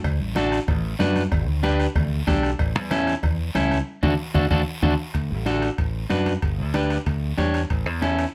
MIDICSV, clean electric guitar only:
0, 0, Header, 1, 2, 480
1, 0, Start_track
1, 0, Key_signature, 2, "major"
1, 0, Tempo, 319149
1, 65, Time_signature, 4, 2, 24, 8
1, 12549, End_track
2, 0, Start_track
2, 0, Title_t, "Clean electric guitar"
2, 0, Program_c, 0, 27
2, 540, Note_on_c, 0, 62, 88
2, 546, Note_on_c, 0, 66, 78
2, 550, Note_on_c, 0, 69, 90
2, 878, Note_off_c, 0, 62, 0
2, 880, Note_off_c, 0, 66, 0
2, 883, Note_off_c, 0, 69, 0
2, 1491, Note_on_c, 0, 62, 79
2, 1500, Note_on_c, 0, 66, 70
2, 1503, Note_on_c, 0, 71, 90
2, 1834, Note_off_c, 0, 62, 0
2, 1835, Note_off_c, 0, 66, 0
2, 1839, Note_off_c, 0, 71, 0
2, 2450, Note_on_c, 0, 62, 88
2, 2456, Note_on_c, 0, 67, 78
2, 2461, Note_on_c, 0, 71, 100
2, 2792, Note_off_c, 0, 62, 0
2, 2793, Note_off_c, 0, 67, 0
2, 2798, Note_off_c, 0, 71, 0
2, 3415, Note_on_c, 0, 62, 83
2, 3421, Note_on_c, 0, 67, 75
2, 3428, Note_on_c, 0, 69, 88
2, 3754, Note_off_c, 0, 62, 0
2, 3757, Note_off_c, 0, 67, 0
2, 3760, Note_off_c, 0, 69, 0
2, 4372, Note_on_c, 0, 61, 88
2, 4375, Note_on_c, 0, 64, 83
2, 4387, Note_on_c, 0, 69, 102
2, 4712, Note_off_c, 0, 61, 0
2, 4716, Note_off_c, 0, 64, 0
2, 4717, Note_off_c, 0, 69, 0
2, 5336, Note_on_c, 0, 61, 82
2, 5346, Note_on_c, 0, 64, 79
2, 5346, Note_on_c, 0, 69, 94
2, 5675, Note_off_c, 0, 61, 0
2, 5676, Note_off_c, 0, 64, 0
2, 5679, Note_off_c, 0, 69, 0
2, 6057, Note_on_c, 0, 62, 93
2, 6064, Note_on_c, 0, 66, 94
2, 6072, Note_on_c, 0, 69, 98
2, 6214, Note_off_c, 0, 62, 0
2, 6215, Note_off_c, 0, 66, 0
2, 6216, Note_off_c, 0, 69, 0
2, 6533, Note_on_c, 0, 62, 97
2, 6542, Note_on_c, 0, 66, 97
2, 6547, Note_on_c, 0, 69, 102
2, 6691, Note_off_c, 0, 69, 0
2, 6692, Note_off_c, 0, 62, 0
2, 6693, Note_off_c, 0, 66, 0
2, 6777, Note_on_c, 0, 62, 97
2, 6780, Note_on_c, 0, 66, 95
2, 6786, Note_on_c, 0, 69, 94
2, 6932, Note_off_c, 0, 66, 0
2, 6933, Note_off_c, 0, 62, 0
2, 6933, Note_off_c, 0, 69, 0
2, 7259, Note_on_c, 0, 62, 94
2, 7261, Note_on_c, 0, 66, 97
2, 7267, Note_on_c, 0, 69, 99
2, 7413, Note_off_c, 0, 62, 0
2, 7413, Note_off_c, 0, 66, 0
2, 7416, Note_off_c, 0, 69, 0
2, 8210, Note_on_c, 0, 62, 80
2, 8220, Note_on_c, 0, 66, 70
2, 8224, Note_on_c, 0, 69, 92
2, 8552, Note_off_c, 0, 62, 0
2, 8554, Note_off_c, 0, 66, 0
2, 8558, Note_off_c, 0, 69, 0
2, 9168, Note_on_c, 0, 62, 74
2, 9174, Note_on_c, 0, 66, 69
2, 9180, Note_on_c, 0, 71, 79
2, 9511, Note_off_c, 0, 62, 0
2, 9512, Note_off_c, 0, 66, 0
2, 9517, Note_off_c, 0, 71, 0
2, 10136, Note_on_c, 0, 62, 76
2, 10146, Note_on_c, 0, 67, 72
2, 10149, Note_on_c, 0, 71, 87
2, 10475, Note_off_c, 0, 62, 0
2, 10480, Note_off_c, 0, 71, 0
2, 10481, Note_off_c, 0, 67, 0
2, 11092, Note_on_c, 0, 62, 79
2, 11099, Note_on_c, 0, 67, 65
2, 11104, Note_on_c, 0, 73, 80
2, 11435, Note_off_c, 0, 62, 0
2, 11436, Note_off_c, 0, 67, 0
2, 11440, Note_off_c, 0, 73, 0
2, 12058, Note_on_c, 0, 61, 80
2, 12070, Note_on_c, 0, 64, 73
2, 12075, Note_on_c, 0, 69, 84
2, 12399, Note_off_c, 0, 61, 0
2, 12402, Note_off_c, 0, 64, 0
2, 12406, Note_off_c, 0, 69, 0
2, 12549, End_track
0, 0, End_of_file